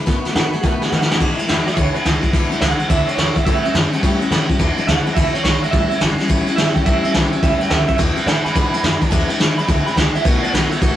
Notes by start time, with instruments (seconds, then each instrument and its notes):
Already playing: clean electric guitar B4
0.06 steel-string acoustic guitar B2 D#3 A3 B3 F#4, upright bass B2, kick, snare, closed hi-hat
0.25 steel-string acoustic guitar A3 B3 F#4, muted upright bass stroke, snare, closed hi-hat
0.35 upright bass A2, steel-string acoustic guitar D#3 A3 B3 F#4, clean electric guitar F#5, snare, closed hi-hat
0.44 clean electric guitar B4
0.52 steel-string acoustic guitar A3 B3 F#4, clean electric guitar G#4, muted upright bass stroke, closed hi-hat
0.63 steel-string acoustic guitar B2 D#3 A3 B3 F#4, upright bass B2, clean electric guitar F#5, kick, closed hi-hat
0.72 clean electric guitar B4
0.81 steel-string acoustic guitar A3 B3 F#4, clean electric guitar G#4, muted upright bass stroke, snare, closed hi-hat
0.91 steel-string acoustic guitar D#3 A3 B3 F#4, upright bass D#3, clean electric guitar F#5, snare
1.01 clean electric guitar F#5, snare
1.10 steel-string acoustic guitar A3 B3 F#4, muted upright bass stroke, snare
1.20 steel-string acoustic guitar E2 B2 E3 G#3 D4 E4, upright bass B2, kick, crash
1.37 steel-string acoustic guitar E3 G#3 D4 E4, muted upright bass stroke, ride
1.47 upright bass E2, steel-string acoustic guitar E3 G#3 D4 E4, snare, ride
1.66 steel-string acoustic guitar E3 G#3 D4 E4, clean electric guitar G#4 E5, snare, ride
1.76 upright bass D2, steel-string acoustic guitar E2 B2 E3 G#3 D4 E4, clean electric guitar E4 C#5, kick, ride
1.94 steel-string acoustic guitar E3 G#3 D4 E4, clean electric guitar B4, muted upright bass stroke, ride
2.04 upright bass C#2, steel-string acoustic guitar E3 G#3 D4 E4, snare, ride
2.22 steel-string acoustic guitar E3 G#3 D4 E4, muted upright bass stroke, kick, ride
2.33 upright bass B1, steel-string acoustic guitar E2 B2 E3 G#3 D4 E4, kick, ride
2.51 steel-string acoustic guitar E3 G#3 D4 E4, ride
2.61 upright bass C#2, steel-string acoustic guitar E3 G#3 D4 E4, clean electric guitar F#5, snare, ride
2.79 steel-string acoustic guitar E3 G#3 D4 E4, ride
2.89 upright bass D2, steel-string acoustic guitar E2 B2 E3 G#3 D4 E4, clean electric guitar E5, kick, ride
3.06 steel-string acoustic guitar E3 G#3 D4 E4, clean electric guitar C#5, ride
3.17 upright bass E2, steel-string acoustic guitar E3 G#3 D4 E4, clean electric guitar C#5, snare, ride
3.34 steel-string acoustic guitar E3 G#3 D4 E4, clean electric guitar E5, kick, ride
3.45 steel-string acoustic guitar A2 E3 G3 C#4 E4, upright bass A2, clean electric guitar E5, kick, ride
3.63 steel-string acoustic guitar G3 C#4 E4, muted upright bass stroke, ride
3.73 upright bass F#2, steel-string acoustic guitar E3 G3 C#4 E4, snare, ride
3.92 steel-string acoustic guitar G3 C#4 E4, ride
4.03 upright bass G2, steel-string acoustic guitar A2 E3 G3 C#4 E4, kick, ride
4.20 steel-string acoustic guitar G3 C#4 E4, muted upright bass stroke, ride
4.31 upright bass A2, steel-string acoustic guitar E3 G3 C#4 E4, snare, ride
4.49 steel-string acoustic guitar G3 C#4 E4, muted upright bass stroke, kick, ride
4.59 steel-string acoustic guitar E2 B2 E3 G#3 D4 E4, upright bass E2, kick, ride
4.76 steel-string acoustic guitar E3 G#3 D4 E4, muted upright bass stroke, ride
4.87 upright bass D2, steel-string acoustic guitar E3 G#3 D4 E4, clean electric guitar F#5, snare, ride
5.05 steel-string acoustic guitar E3 G#3 D4 E4, muted upright bass stroke, ride
5.14 upright bass C#2, steel-string acoustic guitar E2 B2 E3 G#3 D4 E4, clean electric guitar E5, kick, ride
5.33 steel-string acoustic guitar E3 G#3 D4 E4, clean electric guitar C#5, ride
5.44 upright bass B1, steel-string acoustic guitar E3 G#3 D4 E4, clean electric guitar C#5, snare, ride
5.62 steel-string acoustic guitar E3 G#3 D4 E4, clean electric guitar E5, ride
5.71 upright bass A1, steel-string acoustic guitar A2 E3 G3 C#4 E4, clean electric guitar E5, kick, ride
5.90 steel-string acoustic guitar G3 C#4 E4, ride
6.00 upright bass G1, steel-string acoustic guitar E3 G3 C#4 E4, snare, ride
6.18 steel-string acoustic guitar G3 C#4 E4, muted upright bass stroke, snare, ride
6.28 upright bass A1, steel-string acoustic guitar A2 E3 G3 C#4 E4, kick, ride
6.47 steel-string acoustic guitar G3 C#4 E4, ride
6.56 upright bass G#1, steel-string acoustic guitar E3 G3 C#4 E4, clean electric guitar E5, snare, ride
6.75 steel-string acoustic guitar G3 C#4 E4, clean electric guitar G5, kick, ride
6.85 upright bass A1, steel-string acoustic guitar A2 E3 G3 C#4 E4, clean electric guitar E5, kick, ride
7.03 steel-string acoustic guitar G3 C#4 E4, clean electric guitar E5, muted upright bass stroke, ride
7.13 upright bass B1, steel-string acoustic guitar E3 G3 C#4 E4, clean electric guitar G5, snare, ride
7.32 steel-string acoustic guitar G3 C#4 E4, clean electric guitar E5, ride
7.43 upright bass C#2, steel-string acoustic guitar A2 E3 G3 C#4 E4, clean electric guitar E5, kick, ride
7.60 steel-string acoustic guitar G3 C#4 E4, clean electric guitar G5, muted upright bass stroke, ride
7.70 upright bass D2, steel-string acoustic guitar E3 G3 C#4 E4, clean electric guitar E5, snare, ride
7.87 steel-string acoustic guitar G3 C#4 E4, clean electric guitar E5, kick, ride
7.98 steel-string acoustic guitar E2 B2 E3 G#3 D4 E4, upright bass E2, kick, ride
8.15 steel-string acoustic guitar E3 G#3 D4 E4, muted upright bass stroke, ride
8.26 upright bass A2, steel-string acoustic guitar E3 G#3 D4 E4, clean electric guitar E5 G#5, snare, ride
8.44 steel-string acoustic guitar E3 G#3 D4 E4, clean electric guitar G#5 B5, muted upright bass stroke, snare, ride
8.55 steel-string acoustic guitar E2 B2 E3 G#3 D4 E4, upright bass G#2, clean electric guitar B5, kick, ride
8.73 steel-string acoustic guitar E3 G#3 D4 E4, muted upright bass stroke, ride
8.83 upright bass F#2, steel-string acoustic guitar E3 G#3 D4 E4, snare, ride
9.01 steel-string acoustic guitar E3 G#3 D4 E4, kick, ride
9.11 steel-string acoustic guitar E2 B2 E3 G#3 D4 E4, upright bass E2, kick, ride
9.28 steel-string acoustic guitar E3 G#3 D4 E4, muted upright bass stroke, ride
9.39 upright bass D#2, steel-string acoustic guitar E3 G#3 D4 E4, snare, ride
9.57 steel-string acoustic guitar E3 G#3 D4 E4, clean electric guitar B5, muted upright bass stroke, ride
9.68 upright bass D2, steel-string acoustic guitar E2 B2 E3 G#3 D4 E4, clean electric guitar G5, kick, ride
9.86 steel-string acoustic guitar G#3 D4 E4, clean electric guitar B5, ride
9.96 upright bass C#2, steel-string acoustic guitar E3 G#3 D4 E4, clean electric guitar G5, snare, ride
10.14 steel-string acoustic guitar E3 G#3 D4 E4, clean electric guitar E5, muted upright bass stroke, ride
10.24 upright bass B1, steel-string acoustic guitar B2 D#3 A3 B3 F#4, clean electric guitar B4, kick, ride
10.42 steel-string acoustic guitar A3 B3 F#4, clean electric guitar D5, ride
10.52 upright bass A#1, steel-string acoustic guitar D#3 A3 B3 F#4, clean electric guitar B4, snare, ride
10.70 steel-string acoustic guitar A3 B3 F#4, clean electric guitar A4, ride
10.81 upright bass A1, steel-string acoustic guitar B2 D#3 A3 B3 F#4, clean electric guitar G4, kick, ride